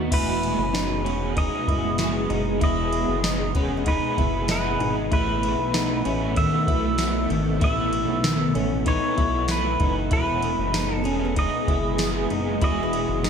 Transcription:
Already playing: analog synth bass D#2, overdriven electric guitar A3 B3 F#4, clean electric guitar D#4
0.11 analog synth bass E1, overdriven electric guitar E2 B2 G#3 B3 G#4, ambient pad B2 G#3 B3 G#4, clean electric guitar E4, pedal steel guitar B4, kick, crash, ride
0.43 ride
0.58 analog synth bass F#1
0.73 nylon-string guitar C#4, clean electric guitar D#4, snare, ride, tambourine
1.04 analog synth bass E1, overdriven electric guitar G#3 B3 G#4, clean electric guitar C#4, ride
1.09 overdriven electric guitar D#3
1.37 overdriven electric guitar G#3 B3 G#4, clean electric guitar D#4, pedal steel guitar D#5, kick, ride
1.68 analog synth bass F#1, clean electric guitar E4, kick, ride
1.98 overdriven electric guitar G#3 B3 G#4, nylon-string guitar F#4, snare, ride, tambourine
2.30 analog synth bass F#1, clean electric guitar D#4, ride
2.61 analog synth bass E1, overdriven electric guitar E2 B2 G#3 B3 G#4, clean electric guitar E4, pedal steel guitar D#5, kick, ride
2.93 ride
3.08 analog synth bass F#1
3.24 clean electric guitar D#4, snare, ride, tambourine
3.55 analog synth bass E1, overdriven electric guitar G#3 B3 G#4, clean electric guitar C#4, nylon-string guitar B4, kick, ride
3.59 overdriven electric guitar D#3
3.77 nylon-string guitar D#5
3.86 overdriven electric guitar G#3 B3 G#4, clean electric guitar D#4, pedal steel guitar B4, kick, ride
4.18 analog synth bass F#1, clean electric guitar E4, kick, ride
4.48 overdriven electric guitar G#3 B3, pedal steel guitar B4, nylon-string guitar D#5, snare, ride, tambourine
4.53 overdriven electric guitar G#4
4.80 analog synth bass G#1, clean electric guitar D#4, ride
5.11 analog synth bass A1, overdriven electric guitar A2 E3 A3 B3 E4, ambient pad B2 A3 A4, clean electric guitar E4, pedal steel guitar B4, kick, ride
5.43 ride
5.58 analog synth bass B1
5.74 clean electric guitar D#4, snare, ride, tambourine
6.05 analog synth bass A1, overdriven electric guitar A3 B3 E4, clean electric guitar C#4, ride
6.36 clean electric guitar D#3, overdriven electric guitar E3 A3 B3, pedal steel guitar E5, kick, ride
6.67 analog synth bass B1, clean electric guitar E4, kick, ride
6.97 overdriven electric guitar E3 A3 B3, snare, ride, tambourine
7.30 analog synth bass G#1, clean electric guitar D#3, ride
7.60 analog synth bass A1, overdriven electric guitar A2 E3 A3, clean electric guitar E4, pedal steel guitar E5, kick, ride
7.65 overdriven electric guitar B3
7.93 ride
8.08 analog synth bass B1
8.24 clean electric guitar D#3, snare, ride, tambourine
8.55 analog synth bass A1, clean electric guitar C#4, ride
8.86 overdriven electric guitar E3 A3 B3, clean electric guitar D#4, nylon-string guitar B4, pedal steel guitar C#5, kick, ride
8.90 overdriven electric guitar E4
9.17 analog synth bass B1, clean electric guitar E4, kick, ride
9.48 overdriven electric guitar E3 A3 B3, pedal steel guitar B4, snare, ride, tambourine
9.52 overdriven electric guitar E4
9.80 analog synth bass F#1, clean electric guitar D#4, kick, ride
10.11 analog synth bass E1, overdriven electric guitar E2 B2 G#3 B3 G#4, ambient pad B2 G#3 G#4, clean electric guitar E4, pedal steel guitar B4, kick, ride
10.43 ride
10.59 analog synth bass F#1
10.74 clean electric guitar D#4, snare, ride, tambourine
10.95 pedal steel guitar A4
11.04 analog synth bass E1, overdriven electric guitar B3 G#4, clean electric guitar C#4, nylon-string guitar G#4, ride
11.08 overdriven electric guitar D#3 G#3
11.25 nylon-string guitar B4
11.36 overdriven electric guitar G#3 B3 G#4, clean electric guitar D#4, pedal steel guitar D#5, kick, ride
11.68 analog synth bass F#1, clean electric guitar E4, kick, ride
11.98 overdriven electric guitar G#3 B3 G#4, snare, ride, tambourine
12.30 analog synth bass F#1, clean electric guitar D#4, ride
12.62 analog synth bass E1, overdriven electric guitar E2 B2 G#3 B3 G#4, clean electric guitar E4, nylon-string guitar F#4, pedal steel guitar D#5, kick, ride
12.83 nylon-string guitar B4
12.93 ride
13.09 analog synth bass F#1
13.24 clean electric guitar D#4, snare, ride, tambourine

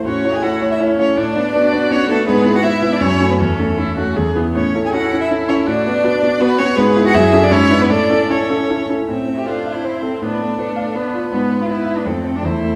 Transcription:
0.05 grand piano A2, cello C#4, viola F#4, violin C#5
0.24 grand piano A3 E4 C#5
0.33 cello G#4, violin G#5
0.42 grand piano A3 E4 C#5, viola E4, cello F#4, violin F#5
0.61 grand piano A3 E4 C#5
0.70 cello E4, violin E5
0.79 grand piano A3 E4 C#5, viola C#4
0.98 grand piano A3 E4 C#5, cello C#4, violin C#5
1.17 grand piano A2, viola D4, cello D4, violin D5
1.36 grand piano B3 D4 B4
1.54 grand piano B3 D4 B4, viola F#4
1.72 grand piano B3 D4 B4
1.91 grand piano B3 D4 B4, cello C#4, violin C#5
2.09 cello A3, grand piano B3 D4 B4, violin A4
2.27 grand piano G#2, cello B3, viola G#4, violin B4
2.45 grand piano B3 E4 B4
2.55 cello F#4, violin F#5
2.63 grand piano B3 E4 B4, viola E4, cello E4, violin E5
2.82 grand piano B3 E4 B4
2.92 cello D4, violin D5
3.00 grand piano F#2, cello C#4, violin C#5
3.20 grand piano A3 C#4 F#4
3.30 cello B3, violin B4
3.39 grand piano E2, cello A3, viola C#4, violin A4
3.59 grand piano A3 C#4 A4
3.78 grand piano A3 C#4 A4, viola E4
3.97 grand piano A3 C#4 A4, viola F#4
4.16 grand piano E2, viola G#4
4.35 grand piano B3 E4 G#4, viola B3
4.55 grand piano A2, cello C#4, violin C#5
4.75 grand piano C#4 E4 A4
4.84 cello G#4, violin G#5
4.93 grand piano C#4 E4 A4, viola E4, cello F#4, violin F#5
5.12 grand piano C#4 E4 A4
5.21 cello E4, violin E5
5.31 grand piano C#4 E4 A4
5.49 grand piano C#4 E4 A4, cello C#4, violin C#5
5.67 grand piano A2, cello D4, viola F#4, violin D5
5.86 grand piano B3 F#4 B4
6.04 grand piano B3 F#4 B4, viola D4
6.23 grand piano B3 F#4 B4
6.40 grand piano B3 F#4 B4, cello B3, viola F#4, violin B4
6.58 grand piano B3 F#4 B4, cello C#4, violin C#5
6.77 grand piano G#2, cello B3, viola G#4, violin B4
6.96 grand piano B3 E4 B4
7.05 cello F#4, violin F#5
7.14 grand piano F#2, cello E4, violin E5
7.33 grand piano C#4 F#4 A4
7.42 cello D4, violin D5
7.51 grand piano G#2, cello C#4, viola E4, violin C#5
7.70 grand piano D4 E4 B4
7.80 cello B3, violin B4
7.90 grand piano A2, cello D4, viola A4, violin D5
8.10 grand piano C#4 E4 A4
8.30 cello C#4, grand piano C#4 E4 A4, violin C#5
8.50 grand piano C#4 E4 A4
8.70 grand piano C#4 E4 A4
8.89 grand piano C#4 E4 A4
9.08 grand piano A2, viola A3, cello C4, violin E5
9.28 grand piano C4
9.38 cello G4
9.46 viola D4, cello F4, grand piano A4, violin C5
9.65 grand piano E5
9.75 cello E4
9.84 viola C4, grand piano C5
10.03 cello C4, grand piano A4
10.22 grand piano A2, viola B3, cello D4, violin B4
10.41 viola A3, grand piano B3
10.58 viola A3, violin A4, grand piano B4
10.76 grand piano F5
10.95 viola B3, grand piano B4, violin B4
11.14 grand piano F4
11.31 grand piano G#2, viola B3, cello B3
11.50 grand piano B3
11.61 cello F4
11.68 viola B3, cello E4, grand piano B4
11.86 grand piano E5
11.97 cello D4
12.05 grand piano F2, viola A3, cello C4, violin A4
12.24 grand piano C4 C5
12.36 cello D4
12.43 grand piano E2, viola A3, cello E4, violin C5
12.63 grand piano A3

